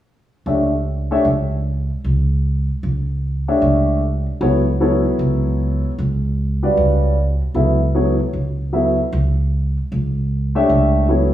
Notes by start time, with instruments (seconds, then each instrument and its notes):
0.46 upright bass C#2, grand piano A3 D4 G4 C#5 E5
1.11 grand piano A3 D4 G4 C#5 E5
1.25 upright bass C#2
2.04 upright bass C#2
2.83 upright bass C#2
3.48 grand piano A3 D4 G4 C#5 E5
3.62 upright bass C#2
4.41 upright bass C#2, grand piano F#3 B3 E4 A4 C#5
4.80 grand piano F#3 B3 E4 A4 C#5
5.19 upright bass C#2
5.98 upright bass C#2
6.63 grand piano C#3 G3 F#4 B4 D5
6.77 upright bass C#2
7.54 upright bass C#2, grand piano F#3 B3 E4 A4 E5
7.95 grand piano F#3 B3 E4 A4 C#5
8.33 upright bass C#2
8.73 grand piano F#3 B3 E4 A4 E5
9.12 upright bass C#2
9.92 upright bass C#2
10.55 grand piano A3 D4 G4 C#5 E5
10.70 upright bass C#2
11.09 grand piano F#3 B3 E4 A4 C#5